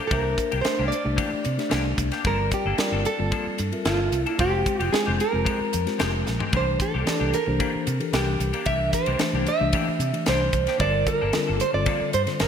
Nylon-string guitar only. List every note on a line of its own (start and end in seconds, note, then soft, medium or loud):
0.07 0.61 A#4 medium
0.61 0.88 C5 medium
0.88 1.92 D5 medium
2.27 2.53 A#4 medium
2.54 3.06 G4 medium
3.06 3.88 A4 medium
3.85 4.21 F4 medium
4.21 4.35 E4 medium
4.40 4.92 G4 medium
4.93 5.20 G#4 medium
5.21 6.23 A#4 medium
6.57 6.81 C5 medium
6.82 7.30 A4 medium
7.35 8.10 A#4 medium
8.15 8.69 G4 medium
8.66 8.94 E5 medium
8.94 9.48 C5 medium
9.48 10.24 E5 medium
10.29 10.78 C5 medium
10.81 11.05 D5 medium
11.08 11.57 A#4 medium
11.61 11.74 C5 medium
11.74 12.14 D5 medium
12.14 12.21 C5 medium
12.41 12.48 A#4 medium